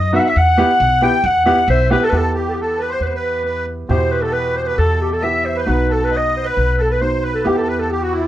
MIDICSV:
0, 0, Header, 1, 5, 480
1, 0, Start_track
1, 0, Key_signature, 1, "minor"
1, 0, Tempo, 444444
1, 380, Time_signature, 2, 2, 24, 8
1, 8937, End_track
2, 0, Start_track
2, 0, Title_t, "Accordion"
2, 0, Program_c, 0, 21
2, 0, Note_on_c, 0, 75, 65
2, 125, Note_off_c, 0, 75, 0
2, 145, Note_on_c, 0, 76, 71
2, 249, Note_off_c, 0, 76, 0
2, 265, Note_on_c, 0, 76, 84
2, 386, Note_off_c, 0, 76, 0
2, 387, Note_on_c, 0, 78, 77
2, 843, Note_off_c, 0, 78, 0
2, 859, Note_on_c, 0, 78, 82
2, 1101, Note_on_c, 0, 79, 93
2, 1103, Note_off_c, 0, 78, 0
2, 1334, Note_on_c, 0, 78, 84
2, 1344, Note_off_c, 0, 79, 0
2, 1546, Note_off_c, 0, 78, 0
2, 1563, Note_on_c, 0, 78, 77
2, 1806, Note_on_c, 0, 76, 67
2, 1814, Note_off_c, 0, 78, 0
2, 2031, Note_off_c, 0, 76, 0
2, 2051, Note_on_c, 0, 71, 71
2, 2162, Note_off_c, 0, 71, 0
2, 2180, Note_on_c, 0, 69, 93
2, 2509, Note_off_c, 0, 69, 0
2, 2524, Note_on_c, 0, 67, 61
2, 2807, Note_off_c, 0, 67, 0
2, 2810, Note_on_c, 0, 69, 58
2, 3008, Note_on_c, 0, 71, 77
2, 3018, Note_off_c, 0, 69, 0
2, 3127, Note_on_c, 0, 72, 80
2, 3131, Note_off_c, 0, 71, 0
2, 3246, Note_on_c, 0, 71, 66
2, 3251, Note_off_c, 0, 72, 0
2, 3286, Note_off_c, 0, 71, 0
2, 3286, Note_on_c, 0, 72, 56
2, 3316, Note_on_c, 0, 71, 69
2, 3324, Note_off_c, 0, 72, 0
2, 3381, Note_off_c, 0, 71, 0
2, 3397, Note_on_c, 0, 71, 63
2, 3703, Note_off_c, 0, 71, 0
2, 3726, Note_on_c, 0, 71, 65
2, 3950, Note_off_c, 0, 71, 0
2, 4203, Note_on_c, 0, 72, 65
2, 4522, Note_on_c, 0, 71, 49
2, 4546, Note_off_c, 0, 72, 0
2, 4557, Note_on_c, 0, 69, 52
2, 4560, Note_off_c, 0, 71, 0
2, 4661, Note_on_c, 0, 71, 75
2, 4674, Note_off_c, 0, 69, 0
2, 4918, Note_on_c, 0, 72, 69
2, 4923, Note_off_c, 0, 71, 0
2, 4989, Note_off_c, 0, 72, 0
2, 5006, Note_on_c, 0, 72, 52
2, 5043, Note_off_c, 0, 72, 0
2, 5043, Note_on_c, 0, 71, 72
2, 5158, Note_off_c, 0, 71, 0
2, 5161, Note_on_c, 0, 69, 65
2, 5508, Note_off_c, 0, 69, 0
2, 5524, Note_on_c, 0, 69, 63
2, 5627, Note_on_c, 0, 76, 66
2, 5652, Note_off_c, 0, 69, 0
2, 5994, Note_on_c, 0, 71, 76
2, 6012, Note_off_c, 0, 76, 0
2, 6339, Note_off_c, 0, 71, 0
2, 6369, Note_on_c, 0, 69, 69
2, 6595, Note_off_c, 0, 69, 0
2, 6602, Note_on_c, 0, 75, 71
2, 6953, Note_on_c, 0, 71, 86
2, 6980, Note_off_c, 0, 75, 0
2, 7300, Note_off_c, 0, 71, 0
2, 7316, Note_on_c, 0, 69, 61
2, 7438, Note_off_c, 0, 69, 0
2, 7443, Note_on_c, 0, 71, 58
2, 7559, Note_on_c, 0, 72, 66
2, 7562, Note_off_c, 0, 71, 0
2, 7804, Note_on_c, 0, 71, 71
2, 7817, Note_off_c, 0, 72, 0
2, 8037, Note_on_c, 0, 67, 60
2, 8060, Note_off_c, 0, 71, 0
2, 8157, Note_on_c, 0, 69, 59
2, 8166, Note_off_c, 0, 67, 0
2, 8183, Note_on_c, 0, 67, 59
2, 8200, Note_off_c, 0, 69, 0
2, 8226, Note_off_c, 0, 67, 0
2, 8230, Note_on_c, 0, 69, 64
2, 8297, Note_off_c, 0, 69, 0
2, 8297, Note_on_c, 0, 71, 67
2, 8416, Note_on_c, 0, 69, 54
2, 8423, Note_off_c, 0, 71, 0
2, 8542, Note_off_c, 0, 69, 0
2, 8545, Note_on_c, 0, 67, 62
2, 8662, Note_on_c, 0, 66, 69
2, 8667, Note_off_c, 0, 67, 0
2, 8766, Note_on_c, 0, 64, 62
2, 8786, Note_off_c, 0, 66, 0
2, 8937, Note_off_c, 0, 64, 0
2, 8937, End_track
3, 0, Start_track
3, 0, Title_t, "Clarinet"
3, 0, Program_c, 1, 71
3, 0, Note_on_c, 1, 75, 69
3, 136, Note_off_c, 1, 75, 0
3, 169, Note_on_c, 1, 76, 78
3, 212, Note_on_c, 1, 78, 72
3, 229, Note_off_c, 1, 76, 0
3, 314, Note_on_c, 1, 76, 82
3, 330, Note_off_c, 1, 78, 0
3, 411, Note_on_c, 1, 78, 106
3, 427, Note_off_c, 1, 76, 0
3, 1116, Note_on_c, 1, 79, 97
3, 1132, Note_off_c, 1, 78, 0
3, 1361, Note_on_c, 1, 78, 95
3, 1377, Note_off_c, 1, 79, 0
3, 1825, Note_off_c, 1, 78, 0
3, 1835, Note_on_c, 1, 72, 113
3, 2046, Note_off_c, 1, 72, 0
3, 2072, Note_on_c, 1, 71, 105
3, 2210, Note_on_c, 1, 69, 106
3, 2226, Note_off_c, 1, 71, 0
3, 2261, Note_on_c, 1, 71, 87
3, 2277, Note_off_c, 1, 69, 0
3, 2357, Note_on_c, 1, 69, 80
3, 2373, Note_off_c, 1, 71, 0
3, 2572, Note_on_c, 1, 67, 71
3, 2588, Note_off_c, 1, 69, 0
3, 2687, Note_on_c, 1, 69, 76
3, 2703, Note_off_c, 1, 67, 0
3, 2743, Note_on_c, 1, 67, 71
3, 2759, Note_off_c, 1, 69, 0
3, 2832, Note_on_c, 1, 69, 79
3, 2848, Note_off_c, 1, 67, 0
3, 3052, Note_on_c, 1, 71, 59
3, 3068, Note_off_c, 1, 69, 0
3, 3160, Note_on_c, 1, 72, 84
3, 3176, Note_off_c, 1, 71, 0
3, 3275, Note_on_c, 1, 71, 62
3, 3292, Note_off_c, 1, 72, 0
3, 3314, Note_on_c, 1, 72, 59
3, 3331, Note_off_c, 1, 71, 0
3, 3423, Note_on_c, 1, 71, 87
3, 3439, Note_off_c, 1, 72, 0
3, 3979, Note_off_c, 1, 71, 0
3, 4211, Note_on_c, 1, 72, 84
3, 4448, Note_on_c, 1, 71, 79
3, 4464, Note_off_c, 1, 72, 0
3, 4559, Note_on_c, 1, 69, 75
3, 4575, Note_off_c, 1, 71, 0
3, 4675, Note_on_c, 1, 71, 80
3, 4691, Note_off_c, 1, 69, 0
3, 4932, Note_on_c, 1, 72, 70
3, 4949, Note_off_c, 1, 71, 0
3, 5041, Note_on_c, 1, 71, 74
3, 5057, Note_off_c, 1, 72, 0
3, 5152, Note_off_c, 1, 71, 0
3, 5159, Note_on_c, 1, 69, 85
3, 5417, Note_on_c, 1, 67, 74
3, 5433, Note_off_c, 1, 69, 0
3, 5544, Note_on_c, 1, 69, 69
3, 5560, Note_off_c, 1, 67, 0
3, 5652, Note_on_c, 1, 76, 78
3, 5668, Note_off_c, 1, 69, 0
3, 5888, Note_on_c, 1, 72, 65
3, 5904, Note_off_c, 1, 76, 0
3, 6010, Note_off_c, 1, 72, 0
3, 6048, Note_on_c, 1, 71, 76
3, 6398, Note_on_c, 1, 69, 77
3, 6415, Note_off_c, 1, 71, 0
3, 6527, Note_on_c, 1, 71, 86
3, 6543, Note_off_c, 1, 69, 0
3, 6664, Note_on_c, 1, 75, 82
3, 6680, Note_off_c, 1, 71, 0
3, 6875, Note_off_c, 1, 75, 0
3, 6881, Note_on_c, 1, 72, 76
3, 6998, Note_on_c, 1, 71, 93
3, 7014, Note_off_c, 1, 72, 0
3, 7362, Note_on_c, 1, 69, 83
3, 7378, Note_off_c, 1, 71, 0
3, 7477, Note_on_c, 1, 71, 76
3, 7493, Note_off_c, 1, 69, 0
3, 7585, Note_on_c, 1, 72, 77
3, 7601, Note_off_c, 1, 71, 0
3, 7823, Note_on_c, 1, 71, 63
3, 7839, Note_off_c, 1, 72, 0
3, 7924, Note_off_c, 1, 71, 0
3, 7931, Note_on_c, 1, 69, 77
3, 8047, Note_on_c, 1, 67, 79
3, 8063, Note_off_c, 1, 69, 0
3, 8174, Note_off_c, 1, 67, 0
3, 8185, Note_on_c, 1, 69, 73
3, 8297, Note_on_c, 1, 71, 78
3, 8313, Note_off_c, 1, 69, 0
3, 8418, Note_on_c, 1, 69, 82
3, 8434, Note_off_c, 1, 71, 0
3, 8534, Note_on_c, 1, 67, 73
3, 8550, Note_off_c, 1, 69, 0
3, 8665, Note_on_c, 1, 66, 68
3, 8681, Note_off_c, 1, 67, 0
3, 8784, Note_off_c, 1, 66, 0
3, 8793, Note_on_c, 1, 64, 69
3, 8937, Note_off_c, 1, 64, 0
3, 8937, End_track
4, 0, Start_track
4, 0, Title_t, "Upright piano"
4, 0, Program_c, 2, 0
4, 137, Note_on_c, 2, 63, 57
4, 138, Note_on_c, 2, 59, 62
4, 145, Note_on_c, 2, 66, 80
4, 259, Note_off_c, 2, 59, 0
4, 259, Note_off_c, 2, 63, 0
4, 262, Note_off_c, 2, 66, 0
4, 618, Note_on_c, 2, 59, 67
4, 623, Note_on_c, 2, 64, 61
4, 628, Note_on_c, 2, 67, 79
4, 738, Note_off_c, 2, 59, 0
4, 740, Note_off_c, 2, 64, 0
4, 742, Note_off_c, 2, 67, 0
4, 1094, Note_on_c, 2, 59, 66
4, 1102, Note_on_c, 2, 64, 58
4, 1106, Note_on_c, 2, 67, 68
4, 1214, Note_off_c, 2, 59, 0
4, 1218, Note_off_c, 2, 64, 0
4, 1220, Note_off_c, 2, 67, 0
4, 1571, Note_on_c, 2, 59, 70
4, 1574, Note_on_c, 2, 64, 64
4, 1582, Note_on_c, 2, 67, 80
4, 1691, Note_off_c, 2, 59, 0
4, 1693, Note_off_c, 2, 64, 0
4, 1697, Note_off_c, 2, 67, 0
4, 2052, Note_on_c, 2, 59, 69
4, 2061, Note_on_c, 2, 64, 56
4, 2062, Note_on_c, 2, 67, 76
4, 2171, Note_off_c, 2, 59, 0
4, 2175, Note_off_c, 2, 64, 0
4, 2176, Note_off_c, 2, 67, 0
4, 2284, Note_on_c, 2, 59, 51
4, 2294, Note_on_c, 2, 64, 41
4, 2305, Note_on_c, 2, 67, 54
4, 4167, Note_off_c, 2, 59, 0
4, 4172, Note_off_c, 2, 64, 0
4, 4177, Note_off_c, 2, 67, 0
4, 4199, Note_on_c, 2, 47, 52
4, 4205, Note_on_c, 2, 64, 47
4, 4220, Note_on_c, 2, 67, 64
4, 5618, Note_off_c, 2, 47, 0
4, 5621, Note_off_c, 2, 64, 0
4, 5629, Note_off_c, 2, 67, 0
4, 5645, Note_on_c, 2, 59, 34
4, 5649, Note_on_c, 2, 64, 36
4, 5657, Note_on_c, 2, 67, 42
4, 6096, Note_off_c, 2, 59, 0
4, 6112, Note_on_c, 2, 59, 50
4, 6118, Note_on_c, 2, 63, 45
4, 6127, Note_on_c, 2, 66, 59
4, 6132, Note_off_c, 2, 64, 0
4, 6136, Note_off_c, 2, 67, 0
4, 7538, Note_off_c, 2, 59, 0
4, 7541, Note_off_c, 2, 63, 0
4, 7546, Note_off_c, 2, 66, 0
4, 7569, Note_on_c, 2, 59, 34
4, 7573, Note_on_c, 2, 63, 34
4, 7577, Note_on_c, 2, 66, 37
4, 8028, Note_off_c, 2, 59, 0
4, 8044, Note_on_c, 2, 59, 58
4, 8051, Note_on_c, 2, 64, 50
4, 8057, Note_off_c, 2, 63, 0
4, 8059, Note_off_c, 2, 66, 0
4, 8065, Note_on_c, 2, 67, 61
4, 8937, Note_off_c, 2, 59, 0
4, 8937, Note_off_c, 2, 64, 0
4, 8937, Note_off_c, 2, 67, 0
4, 8937, End_track
5, 0, Start_track
5, 0, Title_t, "Upright bass"
5, 0, Program_c, 3, 32
5, 0, Note_on_c, 3, 42, 92
5, 195, Note_off_c, 3, 42, 0
5, 389, Note_on_c, 3, 40, 78
5, 672, Note_off_c, 3, 40, 0
5, 864, Note_on_c, 3, 35, 82
5, 1148, Note_off_c, 3, 35, 0
5, 1336, Note_on_c, 3, 40, 91
5, 1622, Note_off_c, 3, 40, 0
5, 1811, Note_on_c, 3, 35, 79
5, 2098, Note_off_c, 3, 35, 0
5, 2291, Note_on_c, 3, 40, 57
5, 3229, Note_off_c, 3, 40, 0
5, 3243, Note_on_c, 3, 40, 54
5, 4187, Note_off_c, 3, 40, 0
5, 4206, Note_on_c, 3, 40, 62
5, 5150, Note_off_c, 3, 40, 0
5, 5163, Note_on_c, 3, 40, 73
5, 6110, Note_off_c, 3, 40, 0
5, 6131, Note_on_c, 3, 35, 64
5, 7076, Note_off_c, 3, 35, 0
5, 7095, Note_on_c, 3, 35, 64
5, 8039, Note_off_c, 3, 35, 0
5, 8053, Note_on_c, 3, 40, 68
5, 8937, Note_off_c, 3, 40, 0
5, 8937, End_track
0, 0, End_of_file